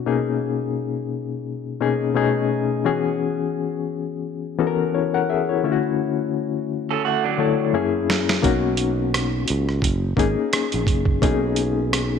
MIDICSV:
0, 0, Header, 1, 5, 480
1, 0, Start_track
1, 0, Key_signature, 5, "major"
1, 0, Tempo, 697674
1, 39, Time_signature, 4, 2, 24, 8
1, 8387, End_track
2, 0, Start_track
2, 0, Title_t, "Reed electric piano"
2, 0, Program_c, 0, 4
2, 0, Control_c, 0, 64, 127
2, 0, Note_on_c, 0, 47, 75
2, 0, Note_on_c, 0, 58, 71
2, 0, Note_on_c, 0, 61, 72
2, 0, Note_on_c, 0, 63, 74
2, 0, Note_on_c, 0, 66, 84
2, 40, Note_off_c, 0, 47, 0
2, 40, Note_on_c, 0, 47, 72
2, 41, Note_off_c, 0, 58, 0
2, 41, Note_on_c, 0, 58, 74
2, 46, Note_off_c, 0, 61, 0
2, 46, Note_on_c, 0, 61, 64
2, 47, Note_off_c, 0, 63, 0
2, 47, Note_on_c, 0, 63, 70
2, 52, Note_on_c, 0, 68, 77
2, 928, Note_off_c, 0, 47, 0
2, 928, Note_off_c, 0, 58, 0
2, 930, Note_off_c, 0, 61, 0
2, 931, Note_off_c, 0, 63, 0
2, 933, Note_off_c, 0, 68, 0
2, 1238, Note_on_c, 0, 47, 76
2, 1241, Note_on_c, 0, 58, 71
2, 1243, Note_on_c, 0, 61, 78
2, 1247, Note_on_c, 0, 63, 73
2, 1252, Note_on_c, 0, 68, 92
2, 1469, Note_off_c, 0, 47, 0
2, 1474, Note_off_c, 0, 61, 0
2, 1477, Note_on_c, 0, 47, 79
2, 1479, Note_off_c, 0, 63, 0
2, 1480, Note_off_c, 0, 58, 0
2, 1481, Note_on_c, 0, 57, 74
2, 1482, Note_off_c, 0, 68, 0
2, 1483, Note_on_c, 0, 61, 79
2, 1487, Control_c, 0, 64, 0
2, 1487, Note_on_c, 0, 63, 77
2, 1490, Note_on_c, 0, 68, 95
2, 1491, Note_off_c, 0, 66, 0
2, 1603, Control_c, 0, 64, 127
2, 1922, Note_off_c, 0, 47, 0
2, 1924, Note_off_c, 0, 57, 0
2, 1925, Note_off_c, 0, 61, 0
2, 1927, Note_off_c, 0, 63, 0
2, 1928, Note_off_c, 0, 68, 0
2, 1957, Note_on_c, 0, 52, 77
2, 1959, Note_on_c, 0, 59, 66
2, 1963, Note_on_c, 0, 61, 72
2, 1965, Note_on_c, 0, 66, 73
2, 1968, Control_c, 0, 64, 0
2, 1969, Note_on_c, 0, 68, 85
2, 2096, Control_c, 0, 64, 127
2, 2846, Note_off_c, 0, 52, 0
2, 2847, Note_off_c, 0, 59, 0
2, 2849, Note_off_c, 0, 61, 0
2, 2850, Note_off_c, 0, 66, 0
2, 2852, Note_off_c, 0, 68, 0
2, 3154, Note_on_c, 0, 52, 83
2, 3157, Note_on_c, 0, 59, 76
2, 3159, Note_on_c, 0, 61, 71
2, 3163, Note_on_c, 0, 66, 67
2, 3167, Note_on_c, 0, 69, 70
2, 3212, Note_on_c, 0, 70, 84
2, 3213, Note_off_c, 0, 69, 0
2, 3401, Note_off_c, 0, 66, 0
2, 3402, Note_on_c, 0, 73, 59
2, 3405, Note_on_c, 0, 64, 53
2, 3426, Note_off_c, 0, 70, 0
2, 3529, Note_off_c, 0, 73, 0
2, 3530, Note_off_c, 0, 64, 0
2, 3538, Note_on_c, 0, 78, 65
2, 3540, Note_on_c, 0, 70, 56
2, 3636, Note_off_c, 0, 78, 0
2, 3637, Note_off_c, 0, 70, 0
2, 3643, Note_on_c, 0, 76, 66
2, 3647, Note_on_c, 0, 68, 62
2, 3769, Note_off_c, 0, 76, 0
2, 3771, Note_off_c, 0, 68, 0
2, 3778, Note_on_c, 0, 73, 56
2, 3782, Note_on_c, 0, 64, 52
2, 3822, Note_off_c, 0, 52, 0
2, 3824, Note_off_c, 0, 59, 0
2, 3825, Note_off_c, 0, 61, 0
2, 3877, Note_on_c, 0, 50, 74
2, 3879, Note_off_c, 0, 64, 0
2, 3881, Note_on_c, 0, 57, 72
2, 3883, Note_on_c, 0, 61, 72
2, 3887, Note_on_c, 0, 64, 69
2, 3888, Control_c, 0, 64, 0
2, 3890, Note_on_c, 0, 65, 65
2, 3934, Note_off_c, 0, 65, 0
2, 3934, Note_on_c, 0, 66, 81
2, 4004, Note_off_c, 0, 73, 0
2, 4013, Control_c, 0, 64, 127
2, 4766, Note_off_c, 0, 50, 0
2, 4768, Note_off_c, 0, 57, 0
2, 4769, Note_off_c, 0, 61, 0
2, 4771, Note_off_c, 0, 64, 0
2, 4794, Note_off_c, 0, 66, 0
2, 5078, Note_on_c, 0, 50, 75
2, 5082, Note_on_c, 0, 57, 77
2, 5086, Note_on_c, 0, 73, 75
2, 5089, Note_on_c, 0, 64, 73
2, 5092, Note_on_c, 0, 69, 82
2, 5318, Note_off_c, 0, 50, 0
2, 5318, Note_on_c, 0, 42, 83
2, 5319, Note_off_c, 0, 64, 0
2, 5320, Note_off_c, 0, 57, 0
2, 5322, Note_off_c, 0, 73, 0
2, 5323, Note_on_c, 0, 58, 79
2, 5325, Note_off_c, 0, 69, 0
2, 5325, Note_on_c, 0, 61, 81
2, 5328, Control_c, 0, 64, 0
2, 5328, Note_on_c, 0, 64, 71
2, 5331, Note_on_c, 0, 68, 92
2, 5457, Control_c, 0, 64, 127
2, 5762, Note_off_c, 0, 42, 0
2, 5765, Note_off_c, 0, 58, 0
2, 5766, Note_off_c, 0, 61, 0
2, 5767, Note_off_c, 0, 64, 0
2, 5769, Note_off_c, 0, 68, 0
2, 5795, Note_on_c, 0, 58, 81
2, 5801, Note_on_c, 0, 61, 74
2, 5805, Note_on_c, 0, 63, 64
2, 5808, Control_c, 0, 64, 0
2, 5809, Note_on_c, 0, 66, 88
2, 5910, Control_c, 0, 64, 127
2, 6685, Note_off_c, 0, 58, 0
2, 6688, Note_off_c, 0, 61, 0
2, 6690, Note_off_c, 0, 63, 0
2, 6692, Note_off_c, 0, 66, 0
2, 6996, Note_on_c, 0, 58, 76
2, 7002, Note_on_c, 0, 61, 73
2, 7007, Note_on_c, 0, 63, 73
2, 7011, Note_on_c, 0, 68, 86
2, 7663, Note_off_c, 0, 58, 0
2, 7667, Note_off_c, 0, 61, 0
2, 7669, Note_off_c, 0, 63, 0
2, 7671, Note_off_c, 0, 68, 0
2, 7717, Note_on_c, 0, 58, 71
2, 7721, Note_on_c, 0, 61, 72
2, 7725, Note_on_c, 0, 63, 74
2, 7730, Note_on_c, 0, 68, 78
2, 8387, Note_off_c, 0, 58, 0
2, 8387, Note_off_c, 0, 61, 0
2, 8387, Note_off_c, 0, 63, 0
2, 8387, Note_off_c, 0, 68, 0
2, 8387, End_track
3, 0, Start_track
3, 0, Title_t, "Clean electric guitar"
3, 0, Program_c, 1, 27
3, 4751, Note_on_c, 1, 61, 53
3, 4752, Note_on_c, 1, 69, 58
3, 4842, Note_off_c, 1, 69, 0
3, 4843, Note_off_c, 1, 61, 0
3, 4850, Note_on_c, 1, 66, 69
3, 4854, Note_on_c, 1, 57, 60
3, 4973, Note_off_c, 1, 66, 0
3, 4975, Note_off_c, 1, 57, 0
3, 4983, Note_on_c, 1, 62, 65
3, 4990, Note_on_c, 1, 54, 60
3, 5306, Note_off_c, 1, 62, 0
3, 5310, Note_off_c, 1, 54, 0
3, 8387, End_track
4, 0, Start_track
4, 0, Title_t, "Fretless electric bass"
4, 0, Program_c, 2, 35
4, 5809, Note_on_c, 2, 35, 91
4, 6496, Note_off_c, 2, 35, 0
4, 6537, Note_on_c, 2, 37, 84
4, 6737, Note_off_c, 2, 37, 0
4, 6763, Note_on_c, 2, 30, 82
4, 6969, Note_off_c, 2, 30, 0
4, 7004, Note_on_c, 2, 32, 91
4, 7119, Note_off_c, 2, 32, 0
4, 7389, Note_on_c, 2, 34, 84
4, 7484, Note_off_c, 2, 34, 0
4, 7484, Note_on_c, 2, 30, 82
4, 7690, Note_off_c, 2, 30, 0
4, 7728, Note_on_c, 2, 35, 100
4, 8387, Note_off_c, 2, 35, 0
4, 8387, End_track
5, 0, Start_track
5, 0, Title_t, "Drums"
5, 5571, Note_on_c, 9, 38, 82
5, 5640, Note_off_c, 9, 38, 0
5, 5706, Note_on_c, 9, 38, 78
5, 5774, Note_off_c, 9, 38, 0
5, 5801, Note_on_c, 9, 36, 108
5, 5808, Note_on_c, 9, 42, 68
5, 5870, Note_off_c, 9, 36, 0
5, 5876, Note_off_c, 9, 42, 0
5, 6036, Note_on_c, 9, 42, 61
5, 6104, Note_off_c, 9, 42, 0
5, 6290, Note_on_c, 9, 37, 106
5, 6294, Note_on_c, 9, 42, 70
5, 6359, Note_off_c, 9, 37, 0
5, 6362, Note_off_c, 9, 42, 0
5, 6519, Note_on_c, 9, 42, 64
5, 6588, Note_off_c, 9, 42, 0
5, 6664, Note_on_c, 9, 37, 36
5, 6733, Note_off_c, 9, 37, 0
5, 6756, Note_on_c, 9, 36, 73
5, 6770, Note_on_c, 9, 42, 79
5, 6824, Note_off_c, 9, 36, 0
5, 6839, Note_off_c, 9, 42, 0
5, 6996, Note_on_c, 9, 36, 80
5, 7013, Note_on_c, 9, 42, 51
5, 7065, Note_off_c, 9, 36, 0
5, 7082, Note_off_c, 9, 42, 0
5, 7243, Note_on_c, 9, 42, 73
5, 7247, Note_on_c, 9, 37, 107
5, 7312, Note_off_c, 9, 42, 0
5, 7316, Note_off_c, 9, 37, 0
5, 7376, Note_on_c, 9, 42, 47
5, 7445, Note_off_c, 9, 42, 0
5, 7477, Note_on_c, 9, 36, 79
5, 7484, Note_on_c, 9, 42, 50
5, 7546, Note_off_c, 9, 36, 0
5, 7552, Note_off_c, 9, 42, 0
5, 7605, Note_on_c, 9, 36, 85
5, 7674, Note_off_c, 9, 36, 0
5, 7720, Note_on_c, 9, 36, 108
5, 7725, Note_on_c, 9, 42, 65
5, 7788, Note_off_c, 9, 36, 0
5, 7794, Note_off_c, 9, 42, 0
5, 7955, Note_on_c, 9, 42, 60
5, 8024, Note_off_c, 9, 42, 0
5, 8209, Note_on_c, 9, 37, 103
5, 8212, Note_on_c, 9, 42, 79
5, 8278, Note_off_c, 9, 37, 0
5, 8281, Note_off_c, 9, 42, 0
5, 8387, End_track
0, 0, End_of_file